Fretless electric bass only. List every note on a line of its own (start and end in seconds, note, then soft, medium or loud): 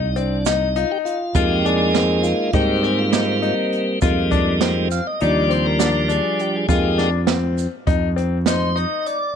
0.00 0.83 C2 medium
1.35 2.32 F2 medium
2.54 3.51 G#2 medium
4.02 4.99 F2 loud
5.22 6.18 D#2 medium
6.69 7.66 F2 medium
7.87 8.84 F2 loud